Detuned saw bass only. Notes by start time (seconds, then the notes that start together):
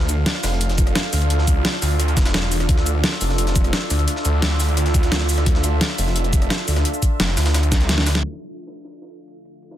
Already playing: D2
0.43 F1
1.13 D2
1.30 D2
1.82 D2
2.17 E1
2.69 D2
3.21 F1
3.90 D2
4.25 D2
5.12 D2
5.46 D2
5.98 F1
6.68 D2
7.20 F1
7.37 D2
7.89 D2